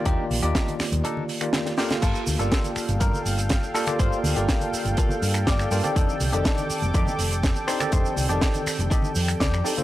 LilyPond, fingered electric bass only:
\new Staff \with { instrumentName = "Fingered electric bass" } { \clef bass \time 4/4 \key g \minor \tempo 4 = 122 ees,16 r16 bes,,16 ees,16 r8. ees,16 r2 | g,,16 r16 d,16 g,,16 r8. g,,16 g,16 r16 g,,8. r8. | g,,16 r16 d,16 g,,16 r8. g,,16 r8 g,8 g,,16 r16 g,16 r16 | f,,16 r16 c,16 f,,16 r8. f,,16 f,16 r16 f,,8. r8. |
f,,16 r16 c,16 f,,16 r8. f,,16 r8 f,16 r16 c,16 f,16 r8 | }